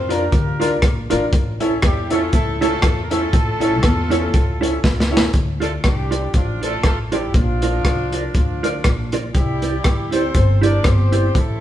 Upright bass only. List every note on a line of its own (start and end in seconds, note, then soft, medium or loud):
0.00 0.25 F2 medium
0.33 0.83 D2 medium
0.83 1.06 A#1 loud
1.12 1.30 A1 loud
1.33 1.75 A1 loud
1.83 2.26 E2 medium
2.33 2.76 C#2 medium
2.83 3.26 E2 loud
3.33 3.84 A1 loud
3.84 4.26 E2 medium
4.34 4.76 C#2 medium
4.84 5.26 C#2 medium
5.34 5.76 D2 medium
5.85 6.27 C2 medium
6.34 6.77 A1 loud
6.84 7.27 A1 medium
7.34 7.77 A#1 loud
7.85 8.27 C2 medium
8.35 8.77 D2 loud
8.85 9.27 A#1 medium
9.35 9.78 C2 loud
9.85 10.28 D2 medium
10.35 10.78 G1 medium
10.85 11.28 G1 medium
11.35 11.60 A1 loud